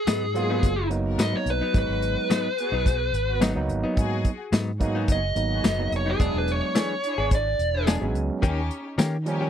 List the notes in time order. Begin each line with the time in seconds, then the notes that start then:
Already playing: G#4
0.07 G#2 F#3 B3 D#4, snare, closed hi-hat, tambourine
0.34 F#3 G#3 A#3 B3 F4 G#4, closed hi-hat
0.50 F#3 B3 D#4
0.63 F#1, kick, closed hi-hat
0.90 F#3 A#3 B3 D#4, closed hi-hat
1.05 B3 F#4 A#4
1.18 G#2 F#3 B3 D#4, snare, closed hi-hat, tambourine
1.22 D#5
1.32 F#3 A#3 B3 D#4, muted fingered electric bass stroke
1.37 C#5
1.46 B1, closed hi-hat
1.50 B4
1.61 F#3 B3 D#4, muted fingered electric bass stroke
1.73 G#1 F#3 G#3 B3 D#4 F#4 B4, kick, closed hi-hat
1.78 B4
1.89 G#1
2.02 closed hi-hat
2.30 G#2 F#3 B3 D#4, snare, closed hi-hat, tambourine
2.58 B3 F#4 G#4, closed hi-hat
2.72 B1 F#3 B3 D#4
2.86 kick, closed hi-hat
3.13 G#1, closed hi-hat
3.28 B3 F#4 B4
3.40 G#2 F#3 A#3 B3 D#4, snare, closed hi-hat, tambourine
3.55 C#2 F#3 A#3 B3 D#4
3.68 G#1, closed hi-hat
3.84 F#3 B3 D#4
3.96 G#2 F#4 G#4, kick, closed hi-hat
4.25 kick, closed hi-hat
4.52 G#2 F#3 B3 D#4, snare, closed hi-hat, tambourine
4.79 F#3 G#3 A#3 B3 D#4 F#4 G#4, kick, closed hi-hat
4.95 F#3 B3 D#4
5.08 F#1 D#5, kick, closed hi-hat
5.35 G#1 F#3 A#3 B3 D#4, closed hi-hat
5.51 B3 F#4 G#4
5.64 F#1 G#2 F#3 B3 D#4, snare, closed hi-hat, tambourine
5.78 F#3 A#3 B3 D#4
5.92 F1, closed hi-hat
5.96 C#5
6.06 F#3 B3 D#4
6.11 G#4
6.19 E1 E3 F#3 G#3 B3 D4 E4 G#4, kick, closed hi-hat
6.34 E1
6.38 B4
6.48 C#5, closed hi-hat
6.75 E3 B3 D4 G#4, snare, closed hi-hat, tambourine
7.03 D4 E4 G#4, closed hi-hat
7.18 G#1 B3 D4 G#4
7.31 D5, kick, closed hi-hat
7.59 E1, closed hi-hat
7.73 D4 E4 G#4
7.86 E3 F#3 G#3 B3 D4 G#4, snare, closed hi-hat, tambourine
8.01 G#1 F#3 G#3 B3 C#4
8.15 C#2, closed hi-hat
8.42 D#2 D#3 A#3 C#4 D#4 G4, kick, closed hi-hat
8.71 closed hi-hat
8.98 D#3 A#3 C#4 G4, snare, closed hi-hat, tambourine
9.26 F3 G3 A#3 C#4 D#4 G4, closed hi-hat
9.41 A#3 C#4 G4